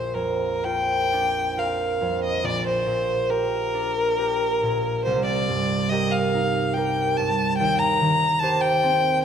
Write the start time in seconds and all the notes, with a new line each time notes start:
Already playing: A#1 F3 F4 C5
0.14 F2 A#4
0.65 F4 A#4 G5
1.13 D4
1.57 F4 A#4 F5
2.01 F2
2.24 D#5
2.44 A#1 D5
2.67 C5
2.86 A#2
3.29 G4 A#4
3.74 D4
4.18 G4 A#4
4.63 A#2
5.05 C2 C5
5.25 D5
5.49 G2
5.89 G4 A#4 D#5
6.11 F5
6.34 D#4
6.74 G4 A#4 G5
7.17 G2 A5
7.57 D#2 G5
7.78 A#5
8.01 D#3
8.39 G4 C5 A5
8.61 G5
8.83 C4